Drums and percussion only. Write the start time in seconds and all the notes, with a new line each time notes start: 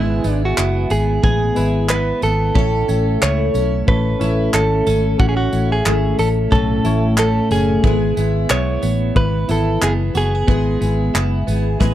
0.24 tambourine
0.58 clap
0.90 tambourine
1.24 kick
1.56 tambourine
1.89 clap
2.22 tambourine
2.55 kick
2.89 tambourine
3.22 clap
3.55 tambourine
3.88 kick
4.21 tambourine
4.54 clap
4.87 tambourine
5.20 kick
5.53 tambourine
5.86 clap
6.19 tambourine
6.52 kick
6.85 tambourine
7.18 clap
7.51 tambourine
7.84 kick
8.17 tambourine
8.50 clap
8.83 tambourine
9.16 kick
9.49 tambourine
9.82 clap
10.15 tambourine
10.48 kick
10.82 tambourine
11.15 clap
11.48 tambourine
11.81 kick, snare